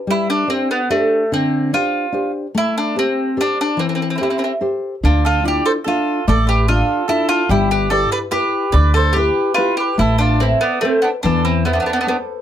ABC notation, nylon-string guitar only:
X:1
M:3/4
L:1/8
Q:1/4=145
K:Gmix
V:1 name="Nylon-string guitar"
G,2 [DGc]2 [DGc]2 | D,2 [DGc]2 [DGc]2 | A,2 [GAc]2 [GAc]2 | E,2 [GAc]2 [GAc]2 |
D,2 [DEF]2 [DFe]2 | A,2 [DFe]2 [DEF]2 | G,2 [EGB]2 [EGB]2 | D,2 [EGB]2 [EGB]2 |
A,2 [ABc]2 [ABc]2 | E,2 [ABc]2 [ABc]2 |]